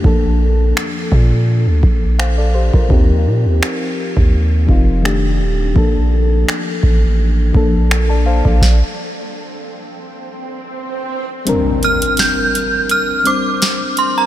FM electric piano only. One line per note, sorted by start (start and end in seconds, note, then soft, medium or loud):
0.02 1.16 F3 medium
0.02 1.17 A#3 medium
0.02 1.17 D4 medium
0.02 1.18 A4 medium
2.19 2.37 C5 soft
2.19 2.37 F5 medium
2.38 2.54 A4 medium
2.38 2.54 D5 medium
2.54 2.73 G4 medium
2.54 2.73 C5 medium
2.74 3.08 F4 medium
2.74 3.08 A#4 medium
2.88 4.02 F3 medium
2.88 4.02 C4 medium
2.88 4.03 D#4 medium
2.88 4.04 G4 medium
4.67 5.03 F3 medium
4.67 5.04 C4 medium
4.67 5.05 D#4 medium
4.67 5.05 F4 medium
5.03 5.62 D#3 medium
5.03 5.62 A3 medium
5.03 5.63 D4 medium
5.03 5.63 G4 medium
5.74 6.88 F3 medium
5.74 6.88 A#3 medium
5.74 6.89 D4 medium
5.74 6.89 A4 medium
7.53 8.39 F3 medium
7.53 8.39 A#3 medium
7.53 8.40 D4 medium
7.53 7.91 A4 medium
8.09 8.25 D5 medium
8.09 8.25 A5 medium
8.26 8.45 C5 medium
8.26 8.44 F5 medium
8.45 8.79 A4 soft
8.45 8.79 D5 medium
11.45 12.59 G3 medium
11.45 12.59 C4 medium
11.45 12.60 D4 medium
11.45 12.61 A#4 loud
13.24 14.10 G3 medium
13.24 14.10 C4 medium
13.24 14.11 D4 medium
13.24 14.12 C5 medium